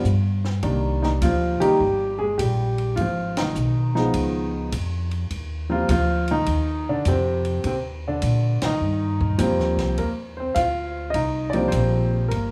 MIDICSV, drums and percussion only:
0, 0, Header, 1, 2, 480
1, 0, Start_track
1, 0, Key_signature, -3, "major"
1, 0, Tempo, 584226
1, 521, Time_signature, 4, 2, 24, 8
1, 10281, End_track
2, 0, Start_track
2, 0, Title_t, "Drums"
2, 37, Note_on_c, 9, 44, 56
2, 38, Note_on_c, 9, 36, 22
2, 119, Note_off_c, 9, 44, 0
2, 120, Note_off_c, 9, 36, 0
2, 366, Note_on_c, 9, 38, 45
2, 449, Note_off_c, 9, 38, 0
2, 514, Note_on_c, 9, 51, 54
2, 518, Note_on_c, 9, 36, 25
2, 596, Note_off_c, 9, 51, 0
2, 600, Note_off_c, 9, 36, 0
2, 849, Note_on_c, 9, 38, 40
2, 931, Note_off_c, 9, 38, 0
2, 999, Note_on_c, 9, 44, 54
2, 999, Note_on_c, 9, 51, 69
2, 1001, Note_on_c, 9, 36, 24
2, 1081, Note_off_c, 9, 44, 0
2, 1081, Note_off_c, 9, 51, 0
2, 1083, Note_off_c, 9, 36, 0
2, 1326, Note_on_c, 9, 51, 59
2, 1408, Note_off_c, 9, 51, 0
2, 1483, Note_on_c, 9, 36, 22
2, 1565, Note_off_c, 9, 36, 0
2, 1962, Note_on_c, 9, 36, 26
2, 1964, Note_on_c, 9, 44, 52
2, 1964, Note_on_c, 9, 51, 69
2, 2045, Note_off_c, 9, 36, 0
2, 2046, Note_off_c, 9, 44, 0
2, 2046, Note_off_c, 9, 51, 0
2, 2285, Note_on_c, 9, 51, 38
2, 2367, Note_off_c, 9, 51, 0
2, 2441, Note_on_c, 9, 51, 54
2, 2443, Note_on_c, 9, 36, 19
2, 2524, Note_off_c, 9, 51, 0
2, 2525, Note_off_c, 9, 36, 0
2, 2767, Note_on_c, 9, 51, 61
2, 2771, Note_on_c, 9, 38, 74
2, 2849, Note_off_c, 9, 51, 0
2, 2853, Note_off_c, 9, 38, 0
2, 2919, Note_on_c, 9, 44, 63
2, 3001, Note_off_c, 9, 44, 0
2, 3253, Note_on_c, 9, 38, 35
2, 3335, Note_off_c, 9, 38, 0
2, 3398, Note_on_c, 9, 51, 59
2, 3402, Note_on_c, 9, 36, 24
2, 3480, Note_off_c, 9, 51, 0
2, 3484, Note_off_c, 9, 36, 0
2, 3880, Note_on_c, 9, 44, 60
2, 3880, Note_on_c, 9, 51, 72
2, 3882, Note_on_c, 9, 36, 25
2, 3962, Note_off_c, 9, 44, 0
2, 3962, Note_off_c, 9, 51, 0
2, 3964, Note_off_c, 9, 36, 0
2, 4200, Note_on_c, 9, 51, 38
2, 4282, Note_off_c, 9, 51, 0
2, 4358, Note_on_c, 9, 51, 59
2, 4360, Note_on_c, 9, 36, 15
2, 4441, Note_off_c, 9, 51, 0
2, 4442, Note_off_c, 9, 36, 0
2, 4837, Note_on_c, 9, 44, 60
2, 4837, Note_on_c, 9, 51, 67
2, 4839, Note_on_c, 9, 36, 18
2, 4919, Note_off_c, 9, 44, 0
2, 4919, Note_off_c, 9, 51, 0
2, 4921, Note_off_c, 9, 36, 0
2, 5156, Note_on_c, 9, 51, 47
2, 5238, Note_off_c, 9, 51, 0
2, 5310, Note_on_c, 9, 51, 62
2, 5317, Note_on_c, 9, 36, 19
2, 5392, Note_off_c, 9, 51, 0
2, 5399, Note_off_c, 9, 36, 0
2, 5793, Note_on_c, 9, 44, 51
2, 5793, Note_on_c, 9, 51, 67
2, 5798, Note_on_c, 9, 36, 23
2, 5875, Note_off_c, 9, 44, 0
2, 5875, Note_off_c, 9, 51, 0
2, 5881, Note_off_c, 9, 36, 0
2, 6118, Note_on_c, 9, 51, 43
2, 6200, Note_off_c, 9, 51, 0
2, 6275, Note_on_c, 9, 51, 56
2, 6279, Note_on_c, 9, 36, 23
2, 6357, Note_off_c, 9, 51, 0
2, 6361, Note_off_c, 9, 36, 0
2, 6751, Note_on_c, 9, 44, 56
2, 6751, Note_on_c, 9, 51, 68
2, 6758, Note_on_c, 9, 36, 22
2, 6833, Note_off_c, 9, 44, 0
2, 6833, Note_off_c, 9, 51, 0
2, 6840, Note_off_c, 9, 36, 0
2, 7078, Note_on_c, 9, 51, 66
2, 7082, Note_on_c, 9, 38, 76
2, 7160, Note_off_c, 9, 51, 0
2, 7165, Note_off_c, 9, 38, 0
2, 7564, Note_on_c, 9, 36, 51
2, 7646, Note_off_c, 9, 36, 0
2, 7711, Note_on_c, 9, 44, 65
2, 7711, Note_on_c, 9, 51, 69
2, 7717, Note_on_c, 9, 36, 25
2, 7793, Note_off_c, 9, 44, 0
2, 7793, Note_off_c, 9, 51, 0
2, 7800, Note_off_c, 9, 36, 0
2, 7884, Note_on_c, 9, 38, 24
2, 7966, Note_off_c, 9, 38, 0
2, 8038, Note_on_c, 9, 38, 43
2, 8040, Note_on_c, 9, 51, 41
2, 8121, Note_off_c, 9, 38, 0
2, 8122, Note_off_c, 9, 51, 0
2, 8196, Note_on_c, 9, 36, 18
2, 8196, Note_on_c, 9, 51, 51
2, 8278, Note_off_c, 9, 51, 0
2, 8279, Note_off_c, 9, 36, 0
2, 8672, Note_on_c, 9, 44, 54
2, 8672, Note_on_c, 9, 51, 61
2, 8674, Note_on_c, 9, 36, 25
2, 8754, Note_off_c, 9, 44, 0
2, 8754, Note_off_c, 9, 51, 0
2, 8756, Note_off_c, 9, 36, 0
2, 9152, Note_on_c, 9, 51, 61
2, 9155, Note_on_c, 9, 36, 18
2, 9234, Note_off_c, 9, 51, 0
2, 9237, Note_off_c, 9, 36, 0
2, 9474, Note_on_c, 9, 51, 45
2, 9556, Note_off_c, 9, 51, 0
2, 9628, Note_on_c, 9, 44, 57
2, 9628, Note_on_c, 9, 51, 63
2, 9635, Note_on_c, 9, 36, 22
2, 9711, Note_off_c, 9, 44, 0
2, 9711, Note_off_c, 9, 51, 0
2, 9717, Note_off_c, 9, 36, 0
2, 10116, Note_on_c, 9, 51, 56
2, 10118, Note_on_c, 9, 36, 19
2, 10198, Note_off_c, 9, 51, 0
2, 10200, Note_off_c, 9, 36, 0
2, 10281, End_track
0, 0, End_of_file